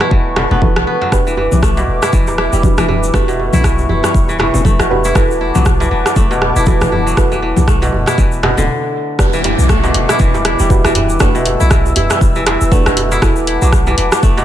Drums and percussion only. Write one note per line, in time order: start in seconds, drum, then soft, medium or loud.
0.00 cross-stick medium
0.00 djembe slap medium
0.11 kick loud
0.11 djembe tone medium
0.36 cross-stick medium
0.36 djembe slap loud
0.36 djembe tone medium
0.36 low conga medium
0.51 low conga loud
0.61 kick loud
0.61 high conga loud
0.61 djembe tone medium
0.76 cross-stick loud
1.01 djembe slap medium
1.01 djembe tone medium
1.12 kick loud
1.12 cross-stick medium
1.12 djembe tone medium
1.12 shaker medium
1.27 shaker soft
1.37 djembe tone loud
1.52 high conga loud
1.52 low conga medium
1.52 shaker medium
1.62 kick loud
1.62 cross-stick medium
1.62 djembe tone medium
1.62 shaker medium
1.77 djembe slap medium
1.77 shaker soft
2.02 cross-stick medium
2.02 djembe slap medium
2.02 djembe tone medium
2.02 shaker medium
2.13 kick loud
2.13 high conga medium
2.13 shaker medium
2.27 djembe slap medium
2.27 djembe tone medium
2.27 shaker soft
2.38 cross-stick medium
2.53 djembe tone medium
2.53 shaker medium
2.63 kick loud
2.63 high conga loud
2.63 shaker medium
2.78 cross-stick medium
2.78 high conga medium
2.78 low conga loud
2.78 shaker soft
2.89 djembe tone medium
2.89 djembe bass medium
3.03 shaker medium
3.14 kick loud
3.14 cross-stick medium
3.14 djembe tone medium
3.14 shaker medium
3.29 shaker soft
3.40 djembe tone medium
3.53 high conga loud
3.53 low conga loud
3.53 shaker medium
3.64 kick loud
3.64 cross-stick medium
3.64 shaker medium
3.78 djembe tone medium
3.78 shaker soft
3.89 high conga medium
3.89 djembe bass medium
4.03 cross-stick medium
4.03 djembe slap medium
4.03 djembe tone medium
4.03 shaker medium
4.14 kick loud
4.14 shaker medium
4.28 djembe tone medium
4.28 shaker soft
4.39 cross-stick medium
4.39 djembe slap loud
4.39 low conga medium
4.54 low conga loud
4.54 shaker medium
4.65 kick loud
4.65 high conga loud
4.65 djembe tone medium
4.65 shaker medium
4.80 cross-stick medium
4.80 shaker soft
4.91 djembe tone medium
5.04 djembe slap medium
5.04 shaker medium
5.15 kick loud
5.15 cross-stick medium
5.15 djembe tone medium
5.15 shaker medium
5.31 shaker soft
5.55 djembe tone medium
5.55 high conga loud
5.55 low conga medium
5.55 shaker medium
5.65 kick loud
5.65 cross-stick medium
5.65 shaker medium
5.80 djembe slap medium
5.80 djembe tone medium
5.80 shaker soft
6.06 cross-stick medium
6.06 djembe slap medium
6.06 djembe tone medium
6.06 shaker medium
6.16 kick loud
6.16 high conga medium
6.16 shaker medium
6.31 djembe slap medium
6.31 shaker soft
6.41 cross-stick medium
6.41 djembe tone medium
6.56 shaker medium
6.66 kick loud
6.66 djembe tone medium
6.66 high conga loud
6.66 shaker medium
6.81 cross-stick medium
6.81 high conga medium
6.81 low conga loud
6.81 shaker soft
6.91 djembe tone medium
6.91 djembe bass medium
7.07 shaker medium
7.17 kick loud
7.17 cross-stick medium
7.17 shaker medium
7.32 djembe tone medium
7.32 shaker soft
7.56 high conga loud
7.56 djembe tone loud
7.56 low conga loud
7.56 shaker medium
7.68 kick loud
7.68 cross-stick medium
7.68 shaker medium
7.82 djembe slap medium
7.82 djembe tone medium
7.82 shaker soft
7.93 high conga medium
7.93 djembe bass loud
8.06 cross-stick medium
8.06 djembe slap medium
8.06 shaker medium
8.18 kick loud
8.18 djembe tone medium
8.18 shaker medium
8.32 shaker soft
8.43 cross-stick medium
8.43 djembe slap loud
8.43 djembe tone medium
8.43 low conga loud
8.57 low conga loud
8.57 shaker medium
9.19 kick loud
9.19 cross-stick medium
9.19 djembe tone medium
9.19 shaker medium
9.33 shaker soft
9.44 open hi-hat medium
9.44 djembe tone loud
9.59 shaker medium
9.69 kick loud
9.69 cross-stick medium
9.69 djembe tone medium
9.69 shaker medium
9.84 djembe slap medium
9.84 shaker soft
9.94 open hi-hat medium
10.09 cross-stick medium
10.09 djembe slap medium
10.09 djembe tone medium
10.09 shaker medium
10.19 kick loud
10.19 shaker medium
10.34 djembe slap medium
10.34 djembe tone medium
10.34 shaker soft
10.45 cross-stick medium
10.45 open hi-hat medium
10.59 djembe tone medium
10.59 shaker medium
10.70 kick loud
10.70 shaker medium
10.85 cross-stick medium
10.85 shaker soft
10.95 open hi-hat medium
10.95 djembe tone medium
10.95 djembe bass medium
11.09 shaker medium
11.20 kick loud
11.20 cross-stick loud
11.20 djembe tone loud
11.20 shaker medium
11.35 shaker soft
11.46 open hi-hat medium
11.46 djembe tone medium
11.60 shaker medium
11.71 kick loud
11.71 cross-stick medium
11.71 shaker medium
11.86 djembe tone medium
11.86 shaker soft
11.96 open hi-hat loud
11.96 djembe bass medium
12.10 cross-stick loud
12.10 djembe slap medium
12.10 djembe tone loud
12.10 shaker medium
12.21 kick loud
12.21 shaker medium
12.35 djembe tone medium
12.35 shaker soft
12.47 cross-stick medium
12.47 open hi-hat medium
12.47 djembe slap loud
12.61 shaker medium
12.71 kick loud
12.71 djembe tone medium
12.71 shaker medium
12.86 cross-stick loud
12.86 shaker soft
12.97 open hi-hat medium
12.97 djembe tone loud
13.12 djembe slap medium
13.12 shaker medium
13.22 kick loud
13.22 cross-stick loud
13.22 djembe tone medium
13.22 shaker medium
13.36 shaker soft
13.47 open hi-hat medium
13.62 djembe tone medium
13.62 shaker medium
13.72 kick loud
13.72 cross-stick medium
13.72 shaker medium
13.87 djembe slap medium
13.87 djembe tone loud
13.87 shaker soft
13.98 open hi-hat medium
14.12 cross-stick loud
14.12 djembe slap medium
14.12 djembe tone medium
14.12 shaker medium
14.23 kick loud
14.23 shaker medium
14.38 djembe slap medium
14.38 shaker soft